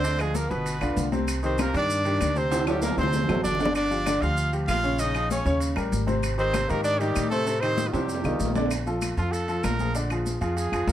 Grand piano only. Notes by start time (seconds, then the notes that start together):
0.03 D3 D4 D5
0.20 F3 F4 G#4
0.51 B2 B3 B4
0.81 D3 D4 F4
1.12 C3 C4 C5
1.43 D#3 D#4 G4
1.59 C3 C4 C5
1.73 D#3 D4 G4
2.05 D#3 D4 G4
2.36 C3 C4 C5
2.51 C3 C4 C5
2.66 F#3 F#4 A4
2.97 C3 C4 C5
3.28 F#3 F#4 A4
3.59 D3 D4 D5
3.91 F3 F4 G4
4.06 D3 D4 D5
4.21 F3 F4 G4
4.52 F3 F4 G4
4.83 C#3 C#4 C#5
4.99 C#3 C#4 C#5
5.15 F3 F4 G#4
5.45 C#3 C#4 C#5
5.76 G3 G4 A#4
6.07 C3 C4 C5
6.38 D#3 D#4 G4
6.53 C3 C4 C5
6.69 D#3 D#4 G4
7.01 D#3 D#4 G4
7.31 C3 C4 C5
7.46 C3 C4 C5
7.62 D#3 D#4 G4
7.93 C3 C4 C5
8.25 D#3 D#4 F4
8.55 D3 D4 D5
8.87 F3 F4 A4
9.18 F3 F4 A4
9.49 F3 F4 A4
9.80 F3 F4 G#4
9.95 D3 D4 D5
10.11 F3 F4 G#4
10.41 F3 F4 G#4
10.72 F3 F4 G#4